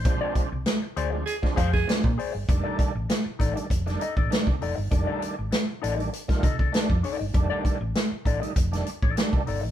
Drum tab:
HH |x-x-x-x-x-x-x-o-|x-x-x-xxxxx-x-o-|x-x-x-xxxxx-x-o-|x-x-x-xxxxx-x-o-|
SD |----o----o-oo---|----o----o--o---|----o----o--o---|----o----o--o---|
BD |o-o------ooo-o--|o-o---o-o--o-o--|o--------ooo-o--|o-o---o-o--o-o--|